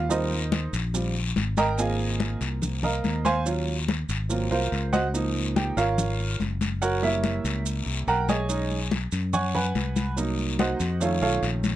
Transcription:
Already playing: D#2
0.09 G3 C4 D#4 F4 A#4 C5 D#5, high conga, long guiro, maracas
0.31 high conga, maracas
0.52 high conga, short guiro, maracas
0.73 A#1, high conga, short guiro, maracas
0.94 G3 C4 F4, high conga, long guiro, maracas
1.15 high conga, maracas
1.36 G#1, high conga, short guiro, maracas
1.57 A#4 D#5 G5 A#5, high conga, short guiro, maracas
1.78 A#3 C4 F4 G#4 D#5 F5 G#5, high conga, long guiro, maracas
1.99 high conga, maracas
2.20 high conga, short guiro, maracas
2.41 C2, high conga, short guiro, maracas
2.62 high conga, low conga, long guiro, maracas
2.83 A#4 D#5 F5 A#5, high conga, low conga, maracas
3.04 D#2, high conga, short guiro, maracas
3.25 C5 F5 G#5 C6, high conga, short guiro, maracas
3.45 F#3 C#4 F4, high conga, long guiro, maracas
3.68 high conga, maracas
3.88 high conga, short guiro, maracas
4.09 G#1, high conga, short guiro, maracas
4.29 F#3 A#3 C4 F4, high conga, long guiro, maracas
4.51 C2 F4 A#4 C5 F5, high conga, maracas
4.72 C#2, high conga, short guiro, maracas
4.93 F#4 C5 D#5 F#5, high conga, short guiro, maracas
5.13 F3 A#3 D#4, high conga, long guiro, maracas
5.35 high conga, maracas
5.56 G4 G5, high conga, short guiro, maracas
5.77 G#1 F4 A#4 C#5 F5, high conga, short guiro, maracas
5.98 high conga, low conga, long guiro, maracas
6.19 high conga, maracas
6.40 F#1, high conga, short guiro, maracas
6.61 high conga, short guiro, maracas
6.82 F#4 A#4 C#5 F#5, high conga, long guiro, maracas
7.02 G3 A#3 E4 A#4 C#5 E5, high conga, maracas
7.24 high conga, short guiro, maracas
7.44 C#2, high conga, short guiro, maracas
7.66 high conga, long guiro, maracas
7.86 C2, high conga, maracas
8.07 B1 A#4 F#5 G5 A#5, high conga, short guiro, maracas
8.29 G#4 C#5 D#5 G#5, high conga, short guiro, maracas
8.49 G#3 C#4 D#4, high conga, long guiro, maracas
8.70 high conga, maracas
8.91 high conga, short guiro, maracas
9.12 F#2, high conga, short guiro, maracas
9.33 C#5 F#5 G#5 C#6, high conga, low conga, long guiro, maracas
9.54 B4 F#5 G#5 B5, high conga, low conga, maracas
9.75 C2, high conga, short guiro, maracas
9.96 high conga, short guiro, maracas
10.16 F#3 A#3 D#4, high conga, long guiro, maracas
10.38 high conga, maracas
10.59 F#4 C5 D#5 F#5, high conga, short guiro, maracas
10.80 F2, high conga, short guiro, maracas
11.00 D#3 A3 C#4 F4 A4 C#5 F5, high conga, long guiro, maracas
11.21 B1 F4 A4 C#5 F5, high conga, maracas
11.42 A#1, high conga, short guiro, maracas
11.64 high conga, short guiro, maracas

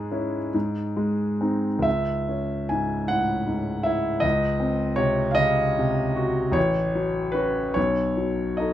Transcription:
Already playing: G#2 G#3 G#4
0.12 C#4 E4
0.54 G#2
0.97 G#3
1.41 C4 D#4
1.79 C#2 E5
2.28 C#4
2.69 G#2 G#5
3.08 A2 F#5
3.47 G#2
3.83 E4 E5
4.20 C#2 D#5
4.60 C4
4.96 C3 C#5
5.31 D#5 F5
5.37 C#3
5.79 C3
6.16 F#4
6.52 A1 C#5
6.95 F#3
7.32 C#4 F#4 B4
7.74 B1 C#5
8.17 F#3
8.57 D#4 A4 D#5

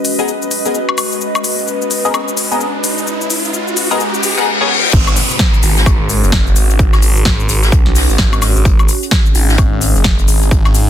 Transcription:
Already playing: G#3 C#4 F#4 B4 D#5, riser
0.05 open hi-hat, shaker
0.19 B3 G#4 A#4 D#5, shaker
0.28 shaker
0.42 shaker
0.51 open hi-hat, shaker
0.65 B3 G#4 A#4 D#5, shaker
0.75 shaker
0.89 high woodblock
0.98 open hi-hat, high woodblock, shaker
1.12 shaker
1.21 shaker
1.35 high woodblock, shaker
1.44 open hi-hat, shaker
1.58 shaker
1.68 shaker
1.82 shaker
1.91 open hi-hat, shaker
2.05 B3 G#4 A#4 D#5, shaker
2.14 high woodblock, shaker
2.28 shaker
2.37 open hi-hat, shaker
2.51 B3 G#4 A#4 D#5, shaker
2.61 shaker
2.84 open hi-hat, shaker
2.98 shaker
3.07 shaker
3.21 shaker
3.30 open hi-hat, shaker
3.45 shaker
3.54 shaker
3.68 shaker
3.77 open hi-hat, shaker
3.91 B3 G#4 A#4 D#5, shaker
4.00 reverse cymbal, shaker
4.14 shaker
4.23 open hi-hat, shaker
4.38 B3 G#4 A#4 F#5, shaker
4.61 B3 G#4 A#4 C#5
4.93 G#1 C#4, kick, closed hi-hat, crash, downlifter, shaker
5.05 F#4, high woodblock, shaker
5.16 closed hi-hat, open hi-hat, shaker
5.31 closed hi-hat, shaker
5.39 kick, snare, closed hi-hat, shaker
5.54 shaker
5.63 G#1, closed hi-hat, open hi-hat, shaker
5.77 snare, shaker
5.86 kick, closed hi-hat, high woodblock, shaker
6.00 G#1
6.09 closed hi-hat, open hi-hat, shaker
6.24 F#1, closed hi-hat, shaker
6.32 kick, snare, closed hi-hat, shaker
6.47 closed hi-hat, shaker
6.56 G#1, closed hi-hat, open hi-hat, shaker
6.70 closed hi-hat, shaker
6.79 kick, closed hi-hat, shaker
6.93 G#1, snare, high woodblock, shaker
7.02 closed hi-hat, open hi-hat, shaker
7.17 shaker
7.25 G#1, kick, snare, closed hi-hat, shaker
7.40 shaker
7.49 G#1, closed hi-hat, open hi-hat, shaker
7.63 snare, shaker
7.72 B1, kick, closed hi-hat, shaker
7.86 B1, snare
7.95 snare, open hi-hat, shaker
8.10 G#1, shaker
8.18 kick, snare, closed hi-hat, shaker
8.33 closed hi-hat, high woodblock, shaker
8.42 snare, closed hi-hat, open hi-hat, high woodblock, shaker
8.56 G#1, shaker
8.65 G#1, kick, closed hi-hat, shaker
8.77 G#4, high woodblock, shaker
8.88 closed hi-hat, open hi-hat, shaker
9.03 closed hi-hat, shaker
9.11 kick, snare, closed hi-hat, shaker
9.26 shaker
9.35 G#1, closed hi-hat, open hi-hat, shaker
9.49 snare, shaker
9.58 kick, closed hi-hat, high woodblock, shaker
9.72 G#1
9.81 closed hi-hat, open hi-hat, shaker
9.96 F#1, closed hi-hat, shaker
10.04 kick, snare, closed hi-hat, shaker
10.19 closed hi-hat, shaker
10.28 G#1, closed hi-hat, open hi-hat, shaker
10.42 closed hi-hat, shaker
10.51 kick, closed hi-hat, shaker
10.65 G#1, snare, high woodblock, shaker
10.74 closed hi-hat, open hi-hat, shaker

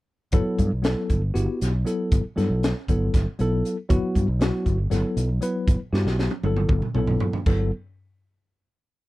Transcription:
0.32 G1 F#3 B3 E4 A4, kick, closed hi-hat
0.46 muted fretless electric bass stroke
0.59 G2, kick, closed hi-hat
0.72 B1
0.82 F#3 B3 E4 A4, snare, closed hi-hat
1.10 G1, kick, closed hi-hat
1.34 G1 B3 E4 F#4 G4, closed hi-hat
1.61 B1, snare, closed hi-hat
1.85 F#3 B3 E4 A4, closed hi-hat
2.12 G1, kick, closed hi-hat
2.36 G2 F#3 B3 E4 A4, snare, closed hi-hat
2.50 B1
2.63 snare, closed hi-hat
2.88 G1 F#3 B3 E4 A4, kick, closed hi-hat
3.14 G1, kick, snare, closed hi-hat
3.39 B1 F#3 B3 E4 A4, closed hi-hat
3.65 closed hi-hat
3.89 G1 F#3 B3 E4 F#4, kick, closed hi-hat
4.15 G2, kick, closed hi-hat
4.28 B1
4.40 F#3 B3 E4 F#4, snare, closed hi-hat
4.66 G1, kick, closed hi-hat
4.90 G1 F#3 B3 E4 A4, snare, closed hi-hat
5.17 B1, closed hi-hat
5.41 F#3 B3 E4 B4, closed hi-hat
5.68 G1, kick, closed hi-hat
5.92 G2 B3 E4 F#4 G4, snare
6.05 B1, snare
6.19 snare
6.30 high tom
6.43 G1 F#3 B3 E4 A4, high tom
6.56 mid tom
6.69 G1, kick, mid tom
6.82 mid tom
6.94 B1 F#3 B3 E4 A4, mid tom
7.07 floor tom
7.20 floor tom
7.33 floor tom
7.46 G1 F#3 B3 E4 A4, kick, crash

